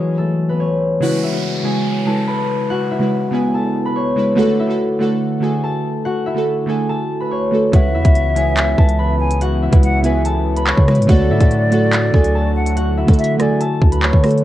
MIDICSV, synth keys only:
0, 0, Header, 1, 2, 480
1, 0, Start_track
1, 0, Tempo, 419580
1, 1167, Time_signature, 4, 2, 24, 8
1, 16521, End_track
2, 0, Start_track
2, 0, Title_t, "Synth keys"
2, 0, Program_c, 0, 88
2, 1149, Note_on_c, 0, 49, 108
2, 1163, Note_on_c, 0, 56, 90
2, 1176, Note_on_c, 0, 64, 94
2, 1189, Note_on_c, 0, 71, 112
2, 1409, Note_off_c, 0, 49, 0
2, 1413, Control_c, 0, 64, 127
2, 1416, Note_off_c, 0, 56, 0
2, 1422, Note_off_c, 0, 64, 0
2, 1429, Note_off_c, 0, 71, 0
2, 1503, Note_on_c, 0, 49, 82
2, 1516, Note_on_c, 0, 56, 71
2, 1530, Note_on_c, 0, 64, 66
2, 1543, Note_on_c, 0, 71, 88
2, 1766, Note_off_c, 0, 49, 0
2, 1772, Note_off_c, 0, 56, 0
2, 1779, Note_off_c, 0, 64, 0
2, 1786, Note_off_c, 0, 71, 0
2, 1864, Note_on_c, 0, 49, 84
2, 1877, Note_on_c, 0, 56, 80
2, 1890, Note_on_c, 0, 64, 69
2, 1904, Note_on_c, 0, 73, 97
2, 2210, Note_off_c, 0, 49, 0
2, 2216, Note_off_c, 0, 56, 0
2, 2223, Note_off_c, 0, 64, 0
2, 2230, Note_off_c, 0, 73, 0
2, 2351, Note_on_c, 0, 49, 74
2, 2365, Note_on_c, 0, 56, 66
2, 2378, Note_on_c, 0, 64, 71
2, 2391, Note_on_c, 0, 71, 88
2, 3028, Note_off_c, 0, 49, 0
2, 3035, Note_off_c, 0, 56, 0
2, 3041, Note_off_c, 0, 64, 0
2, 3048, Note_off_c, 0, 71, 0
2, 3423, Note_on_c, 0, 49, 78
2, 3436, Note_on_c, 0, 56, 74
2, 3449, Note_on_c, 0, 64, 74
2, 3462, Note_on_c, 0, 71, 80
2, 3685, Note_off_c, 0, 49, 0
2, 3692, Note_off_c, 0, 56, 0
2, 3699, Note_off_c, 0, 64, 0
2, 3705, Note_off_c, 0, 71, 0
2, 3786, Note_on_c, 0, 49, 85
2, 3799, Note_on_c, 0, 59, 77
2, 3813, Note_on_c, 0, 64, 73
2, 3826, Note_on_c, 0, 71, 89
2, 4465, Note_off_c, 0, 49, 0
2, 4472, Note_off_c, 0, 59, 0
2, 4478, Note_off_c, 0, 64, 0
2, 4485, Note_off_c, 0, 71, 0
2, 4755, Note_on_c, 0, 49, 79
2, 4768, Note_on_c, 0, 56, 80
2, 4781, Note_on_c, 0, 64, 78
2, 4795, Note_on_c, 0, 71, 90
2, 4928, Note_off_c, 0, 49, 0
2, 4935, Note_off_c, 0, 56, 0
2, 4941, Note_off_c, 0, 64, 0
2, 4948, Note_off_c, 0, 71, 0
2, 4982, Note_on_c, 0, 50, 104
2, 4995, Note_on_c, 0, 57, 96
2, 5008, Note_on_c, 0, 66, 98
2, 5021, Note_on_c, 0, 69, 118
2, 5022, Control_c, 0, 64, 0
2, 5245, Note_off_c, 0, 50, 0
2, 5248, Control_c, 0, 64, 127
2, 5252, Note_off_c, 0, 57, 0
2, 5258, Note_off_c, 0, 66, 0
2, 5265, Note_off_c, 0, 69, 0
2, 5346, Note_on_c, 0, 50, 78
2, 5359, Note_on_c, 0, 57, 65
2, 5372, Note_on_c, 0, 66, 72
2, 5385, Note_on_c, 0, 69, 88
2, 5607, Note_off_c, 0, 50, 0
2, 5613, Note_off_c, 0, 57, 0
2, 5620, Note_off_c, 0, 66, 0
2, 5627, Note_off_c, 0, 69, 0
2, 5708, Note_on_c, 0, 50, 82
2, 5722, Note_on_c, 0, 57, 78
2, 5734, Note_on_c, 0, 66, 77
2, 5748, Note_on_c, 0, 69, 92
2, 6052, Note_off_c, 0, 50, 0
2, 6059, Note_off_c, 0, 57, 0
2, 6065, Note_off_c, 0, 66, 0
2, 6072, Note_off_c, 0, 69, 0
2, 6181, Note_on_c, 0, 50, 78
2, 6194, Note_on_c, 0, 57, 69
2, 6208, Note_on_c, 0, 66, 68
2, 6221, Note_on_c, 0, 69, 87
2, 6863, Note_off_c, 0, 50, 0
2, 6869, Note_off_c, 0, 57, 0
2, 6876, Note_off_c, 0, 66, 0
2, 6883, Note_off_c, 0, 69, 0
2, 7258, Note_on_c, 0, 50, 75
2, 7271, Note_on_c, 0, 57, 73
2, 7284, Note_on_c, 0, 66, 75
2, 7298, Note_on_c, 0, 69, 94
2, 7523, Note_off_c, 0, 50, 0
2, 7530, Note_off_c, 0, 57, 0
2, 7536, Note_off_c, 0, 66, 0
2, 7543, Note_off_c, 0, 69, 0
2, 7621, Note_on_c, 0, 50, 85
2, 7634, Note_on_c, 0, 57, 84
2, 7648, Note_on_c, 0, 66, 74
2, 7660, Note_on_c, 0, 69, 89
2, 8302, Note_off_c, 0, 50, 0
2, 8309, Note_off_c, 0, 57, 0
2, 8316, Note_off_c, 0, 66, 0
2, 8322, Note_off_c, 0, 69, 0
2, 8592, Note_on_c, 0, 50, 83
2, 8605, Note_on_c, 0, 57, 74
2, 8619, Note_on_c, 0, 66, 73
2, 8632, Note_on_c, 0, 69, 90
2, 8766, Note_off_c, 0, 50, 0
2, 8773, Note_off_c, 0, 57, 0
2, 8780, Note_off_c, 0, 66, 0
2, 8787, Note_off_c, 0, 69, 0
2, 8829, Note_on_c, 0, 49, 107
2, 8842, Note_on_c, 0, 56, 90
2, 8855, Note_on_c, 0, 64, 92
2, 8863, Control_c, 0, 64, 0
2, 8869, Note_on_c, 0, 71, 112
2, 9089, Note_off_c, 0, 49, 0
2, 9091, Control_c, 0, 64, 127
2, 9095, Note_off_c, 0, 56, 0
2, 9102, Note_off_c, 0, 64, 0
2, 9108, Note_off_c, 0, 71, 0
2, 9183, Note_on_c, 0, 49, 85
2, 9196, Note_on_c, 0, 56, 69
2, 9209, Note_on_c, 0, 64, 70
2, 9223, Note_on_c, 0, 71, 88
2, 9446, Note_off_c, 0, 49, 0
2, 9452, Note_off_c, 0, 56, 0
2, 9459, Note_off_c, 0, 64, 0
2, 9465, Note_off_c, 0, 71, 0
2, 9545, Note_on_c, 0, 49, 83
2, 9558, Note_on_c, 0, 56, 80
2, 9571, Note_on_c, 0, 64, 68
2, 9584, Note_on_c, 0, 73, 98
2, 9890, Note_off_c, 0, 49, 0
2, 9897, Note_off_c, 0, 56, 0
2, 9903, Note_off_c, 0, 64, 0
2, 9910, Note_off_c, 0, 73, 0
2, 10032, Note_on_c, 0, 49, 73
2, 10045, Note_on_c, 0, 56, 64
2, 10058, Note_on_c, 0, 64, 72
2, 10071, Note_on_c, 0, 71, 84
2, 10708, Note_off_c, 0, 49, 0
2, 10715, Note_off_c, 0, 56, 0
2, 10721, Note_off_c, 0, 64, 0
2, 10728, Note_off_c, 0, 71, 0
2, 11102, Note_on_c, 0, 49, 77
2, 11115, Note_on_c, 0, 56, 73
2, 11129, Note_on_c, 0, 64, 74
2, 11142, Note_on_c, 0, 71, 79
2, 11365, Note_off_c, 0, 49, 0
2, 11372, Note_off_c, 0, 56, 0
2, 11379, Note_off_c, 0, 64, 0
2, 11385, Note_off_c, 0, 71, 0
2, 11466, Note_on_c, 0, 49, 82
2, 11479, Note_on_c, 0, 59, 79
2, 11492, Note_on_c, 0, 64, 70
2, 11506, Note_on_c, 0, 71, 91
2, 12145, Note_off_c, 0, 49, 0
2, 12152, Note_off_c, 0, 59, 0
2, 12158, Note_off_c, 0, 64, 0
2, 12165, Note_off_c, 0, 71, 0
2, 12435, Note_on_c, 0, 49, 81
2, 12448, Note_on_c, 0, 56, 78
2, 12462, Note_on_c, 0, 64, 74
2, 12475, Note_on_c, 0, 71, 87
2, 12608, Note_off_c, 0, 49, 0
2, 12615, Note_off_c, 0, 56, 0
2, 12621, Note_off_c, 0, 64, 0
2, 12628, Note_off_c, 0, 71, 0
2, 12661, Note_on_c, 0, 50, 104
2, 12675, Note_on_c, 0, 57, 98
2, 12688, Note_on_c, 0, 66, 101
2, 12701, Note_on_c, 0, 69, 119
2, 12704, Control_c, 0, 64, 0
2, 12914, Control_c, 0, 64, 127
2, 12925, Note_off_c, 0, 50, 0
2, 12931, Note_off_c, 0, 57, 0
2, 12938, Note_off_c, 0, 66, 0
2, 12944, Note_off_c, 0, 69, 0
2, 13025, Note_on_c, 0, 50, 79
2, 13039, Note_on_c, 0, 57, 68
2, 13052, Note_on_c, 0, 66, 72
2, 13065, Note_on_c, 0, 69, 86
2, 13287, Note_off_c, 0, 50, 0
2, 13293, Note_off_c, 0, 57, 0
2, 13300, Note_off_c, 0, 66, 0
2, 13306, Note_off_c, 0, 69, 0
2, 13388, Note_on_c, 0, 50, 80
2, 13401, Note_on_c, 0, 57, 80
2, 13415, Note_on_c, 0, 66, 79
2, 13428, Note_on_c, 0, 69, 94
2, 13731, Note_off_c, 0, 50, 0
2, 13738, Note_off_c, 0, 57, 0
2, 13745, Note_off_c, 0, 66, 0
2, 13752, Note_off_c, 0, 69, 0
2, 13861, Note_on_c, 0, 50, 75
2, 13875, Note_on_c, 0, 57, 67
2, 13888, Note_on_c, 0, 66, 65
2, 13901, Note_on_c, 0, 69, 89
2, 14543, Note_off_c, 0, 50, 0
2, 14549, Note_off_c, 0, 57, 0
2, 14556, Note_off_c, 0, 66, 0
2, 14563, Note_off_c, 0, 69, 0
2, 14938, Note_on_c, 0, 50, 74
2, 14951, Note_on_c, 0, 57, 71
2, 14965, Note_on_c, 0, 66, 75
2, 14978, Note_on_c, 0, 69, 94
2, 15203, Note_off_c, 0, 50, 0
2, 15210, Note_off_c, 0, 57, 0
2, 15217, Note_off_c, 0, 66, 0
2, 15223, Note_off_c, 0, 69, 0
2, 15301, Note_on_c, 0, 50, 88
2, 15315, Note_on_c, 0, 57, 81
2, 15327, Note_on_c, 0, 66, 73
2, 15341, Note_on_c, 0, 69, 88
2, 15982, Note_off_c, 0, 50, 0
2, 15989, Note_off_c, 0, 57, 0
2, 15996, Note_off_c, 0, 66, 0
2, 16003, Note_off_c, 0, 69, 0
2, 16274, Note_on_c, 0, 50, 85
2, 16287, Note_on_c, 0, 57, 77
2, 16300, Note_on_c, 0, 66, 74
2, 16314, Note_on_c, 0, 69, 85
2, 16448, Note_off_c, 0, 50, 0
2, 16454, Note_off_c, 0, 57, 0
2, 16461, Note_off_c, 0, 66, 0
2, 16467, Note_off_c, 0, 69, 0
2, 16521, End_track
0, 0, End_of_file